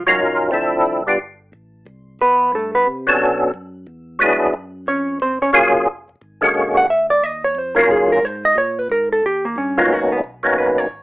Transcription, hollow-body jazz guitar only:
0.07 F#3 F#4
2.21 B3 B4
2.55 A3 A4
2.75 B3 B4
4.88 C#4 C#5
5.22 C4 C5
5.42 C#4 C#5
6.77 F#5
6.90 E5
7.10 D5
7.24 D#5
7.44 C#5
7.58 C5
7.78 A#4
7.91 G#4
8.12 A#4
8.25 C5
8.45 D#5
8.58 C#5
8.79 B4
8.91 A#4
9.12 A4
9.26 G4
9.45 A#3
9.58 C#4
9.78 F4
9.92 F#4
10.12 B3
10.58 B4
10.78 C#5

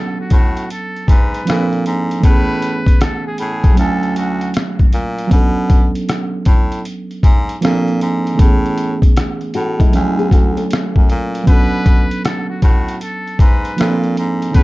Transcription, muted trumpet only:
Already playing: A4
0.21 F#4
0.34 F#4
0.71 A4
1.10 B4
2.25 B4
3.03 A4
3.27 G#4
3.40 G#4
3.78 A4
4.16 F#4
11.48 B4
12.24 A4
12.50 F#4
12.62 F#4
13.02 A4
13.41 B4
14.55 B4

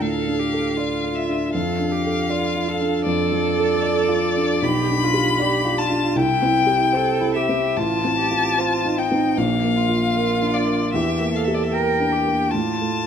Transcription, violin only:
0.01 F5
1.15 E5
1.54 F5
3.06 D5
4.63 B5
5.78 A5
6.16 G5
7.34 E5
7.77 A5
8.98 G5
9.37 F5
10.54 D5
10.93 E5
11.36 F5
11.44 E5
11.54 D5
11.63 E5
11.72 G5
12.51 A5

